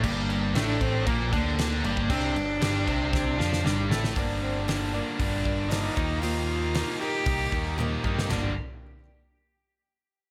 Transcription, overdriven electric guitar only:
X:1
M:4/4
L:1/8
Q:1/4=116
K:Gm
V:1 name="Overdriven electric guitar" clef=bass
[G,,G,]2 [A,,A,]2 [B,,B,] [D,D]2 [G,,G,] | [C,C] G,, [G,,G,] [C,C]2 [F,F] [G,,G,] [A,,A,] | [G,,D,G,]2 [G,,D,G,] [G,,D,G,] [G,,D,G,]2 [G,,D,G,] [E,B,E] | [E,B,E]2 [E,B,E] [E,B,E] [E,B,E]2 [E,B,E] [E,B,E] |
[G,,D,G,] z6 z |]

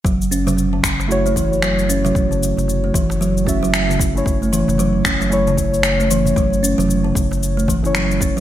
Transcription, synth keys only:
X:1
M:4/4
L:1/16
Q:"Swing 16ths" 1/4=114
K:F#m
V:1 name="Synth keys"
z8 [A,EFc]8- | [A,EFc]8- [A,EFc]2 [A,EFe]4- [A,EFe] [A,CEc]- | [A,CEc]8 [A,CEc]8- | [A,CEc]8- [A,CEc]2 z [A,CEc]4- [A,CEc] |]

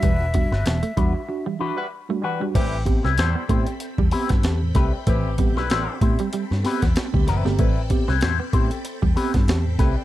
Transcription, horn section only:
X:1
M:4/4
L:1/16
Q:"Swing 16ths" 1/4=95
K:Ador
V:1 name="Horn section"
z8 z3 [G,FB] z2 [G,FB]2 | [E,CG]2 z [G,EB] [G,Ec]2 z8 z2 | [E,CG]2 z [G,EB] [G,EB]2 z8 z2 | z16 |]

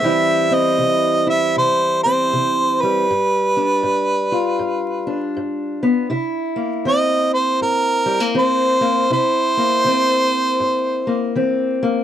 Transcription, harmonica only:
X:1
M:4/4
L:1/8
Q:"Swing" 1/4=80
K:Cmix
V:1 name="Harmonica"
e _e2 =e c c2 =B- | =B6 z2 | z2 _e c B2 c2 | c6 z2 |]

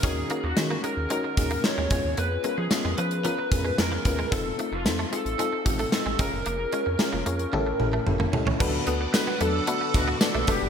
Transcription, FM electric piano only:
X:1
M:4/4
L:1/8
Q:1/4=112
K:Dbmix
V:1 name="FM electric piano"
[DEGB] [DEGB] [DEGA] [DEGB] [DEGB] [DEGA] [DEGB] [CDFA]- | [CDFA] [CDFB] [CDFA] [CDFc] [CDFB] [CDFA] [CDFA] [CDFc] | [=CEF=A] [CEFA] [CEFA] [CEFA] [CEFA] [CEF=G] [CEFA] [DF_AB]- | [DFAB] [DFAd] [DFAB] [DFAd] [^C=E=G=A] [CEGA] [CEGA] [CEGA] |
[K:Dmix] [B,DFAB] [B,DFAB] [B,DFAB] [B,DFAB] [B,DFAB] [B,DFAB] [B,DFAd] [B,DFAB] |]
V:2 name="FM electric piano" clef=bass
E,3 z4 z | z8 | z8 | z4 =A,,3 z |
[K:Dmix] D,3 z4 z |]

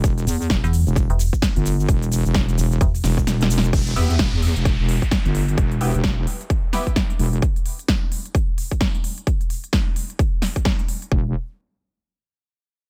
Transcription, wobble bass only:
X:1
M:4/4
L:1/16
Q:"Swing 16ths" 1/4=130
K:Em
V:1 name="Wobble bass" clef=bass
E,,,2 E,,2 E,,, z2 E,,,2 z4 G,,,3 | E,,,3 E,,,3 E,,,2 z2 E,,,2 E,,,4 | E,,,2 E,,2 E,,, E,,2 E,,,2 E,,,2 z2 G,,,3 | E,,,3 E,,,3 z8 E,,,2 |
z16 | z16 | E,,,2 z12 z2 |]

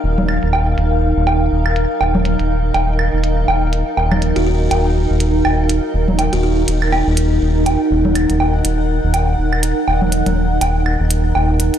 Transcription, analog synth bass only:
X:1
M:4/4
L:1/16
Q:"Swing 16ths" 1/4=122
K:Ebm
V:1 name="Analog synth bass" clef=bass
E,,,3 E,,,3 E,,,3 E,,,3 E,,,3 z | E,,,3 E,,,3 E,,,3 E,,,3 E,,,3 z | E,,,3 E,,,3 E,,,3 E,,,3 E,,,3 z | E,,,3 E,,,3 E,,,3 E,,,3 E,,,3 z |
E,,,3 E,,,3 E,,,3 E,,,3 E,,,3 z | E,,,3 E,,,3 E,,,3 E,,,3 E,,,3 z |]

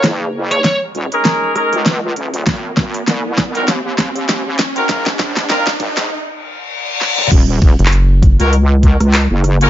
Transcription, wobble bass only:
X:1
M:4/4
L:1/16
Q:"Swing 16ths" 1/4=99
K:Ebdor
V:1 name="Wobble bass" clef=bass
G,,,4 z2 E,,, z4 D,,3 E,,,2 | A,,,4 C,,4 E,,3 E,,3 z2 | B,,,4 z2 A,,, B,,, z8 | E,,,2 E,,, z4 D,,4 D,,2 G,,,3 |]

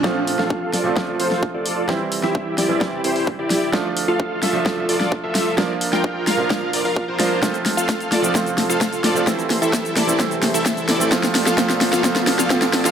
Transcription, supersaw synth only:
X:1
M:4/4
L:1/16
Q:1/4=130
K:F
V:1 name="Supersaw synth"
[FAc] z2 [FAf]3 [FAd]4 [FAc]2 z [FAd]3 | [EGc] z2 [EGe]3 [EGd]4 [EGc]2 z [EGd]3 | [FAd] z2 [FAf]3 [FAe]4 [FAd]2 z [FAe]3 | [FBd] z2 [FBg]3 [FBf]4 [FBd] [FBf]2 [FBc]3 |
[FAc] z2 [FAf]3 [FAd]2 [FAc] z2 [FAf]3 [FAd]2 | z3 [EAe]3 [EAd]2 [EAc] z2 [EAe]3 [EAd]2 | [Fc] z2 [FAf] [FAc] z2 [FAf] z3 [FAf] [FAc] z2 [FAf] |]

